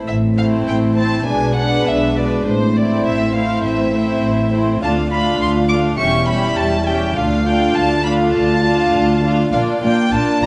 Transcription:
0.07 A1 A2 C4 E4 E5
0.37 A3 C4 E4 C5 F5
0.67 A1 A2 G5
0.97 A3 C4 E4 C5 A5
1.27 B1 B2 G#3 B3 D4 B4 G#5
1.57 G#3 D4 B4 F#5
1.87 B1 B2 E5
2.17 G#3 D4 B4 D5
2.46 A1 A2 C4 E4 C5
2.76 A3 C4 E4 C5 D5
3.06 A1 A2 E5
3.36 A3 C4 E4 C5 F5
3.65 A1 A2 E5
3.94 A3 C4 E4 C5
4.23 A1 A2
4.53 A3 C4 E4 C5
4.83 D2 A3 D4 F4 F5 A5
5.11 A3 D4 F4 F5 B5
5.41 D2 C6
5.69 A3 D4 F4 F5 D6
5.99 E1 E2 G3 C#4 E4 G4 E5 C#6
6.28 G3 C#4 G4 E5 B5
6.57 E1 E2 A5
6.87 G3 C#4 G4 E5 G5
7.16 D2 A3 D4 F4 F5
7.46 A3 D4 F4 F5 G5
7.76 D2 A5
8.04 A3 D4 F4 F5 B5
8.34 D2 A5
8.63 A3 D4 F4 F5
8.94 D2
9.23 A3 D4 F4 F5
9.53 A#1 A#2 A#3 D4 F4 D5 F5
9.82 A#1 A#2 A#3 D4 F4 D5 G5
10.12 A#1 A#2 A#3 D4 F4 D5 A5
10.42 A#1 A#2 A#3 D4 F4 D5 A#5

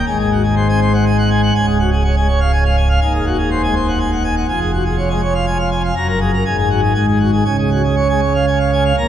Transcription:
0.07 G#1 G#2 G#5
0.19 G#4
0.32 F#4
0.43 G#4
0.56 C5
0.69 C4 G#5
0.81 C5
0.93 F#5
1.06 G#5
1.18 F#5
1.30 G#5
1.43 F#5
1.55 C#1 C#2 G#5
1.66 G#4
1.79 F#4
1.92 G#4
2.04 C#5
2.16 G#3 G#5
2.28 C#5
2.40 F5
2.52 G#5
2.65 F5
2.77 G#5
2.89 F5
3.01 D#1 D#2 G#5
3.14 G#4
3.26 F#4
3.38 G#4
3.51 C5
3.63 G#3 G#5
3.76 C5
3.88 F#5
4.00 G#5
4.12 F#5
4.24 G#5
4.36 F#5
4.48 F1 F2 G#5
4.60 G#4
4.73 F#4
4.85 G#4
4.98 C#5
5.10 G#3 G#5
5.22 C#5
5.35 F5
5.46 G#5
5.59 F5
5.71 G#5
5.84 F5
5.96 F#1 F#2 A#5
6.08 A#4
6.21 G#4
6.33 A#4
6.45 G#1 G#2 G#5
6.57 G#4
6.70 F#4
6.83 G#4
6.94 G#1 G#2 G#5
7.07 G#4
7.20 F#4
7.33 G#4
7.45 C#2 C#3 G#5
7.58 G#4
7.71 F#4
7.84 G#4
7.96 C#5
8.09 G#3 G#5
8.22 C#5
8.34 F5
8.47 G#5
8.60 F5
8.73 G#5
8.85 F5
8.98 A#1 A#2 A#5

